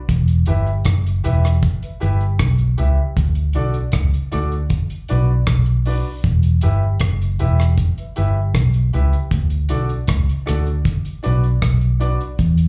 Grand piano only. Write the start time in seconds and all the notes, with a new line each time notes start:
0.47 E4 G4 B4 E5
1.24 E4 G4 B4 E5
1.82 B4 E5
2.00 E4 G4 B4 E5
2.77 E4 G4 B4 E5
3.55 D4 F#4 A4 D5
4.32 D4 F#4 A4 D5
5.09 D4 F#4 B4 D5
5.86 D4 F#4 B4 D5
6.62 E4 G4 B4 E5
7.39 E4 G4 B4 E5
7.98 B4 E5
8.16 E4 G4 B4 E5
8.93 E4 G4 B4 E5
9.69 D4 F#4 A4 D5
10.46 D4 F#4 A4 D5
11.23 D4 F#4 B4 D5
12.00 D4 F#4 B4 D5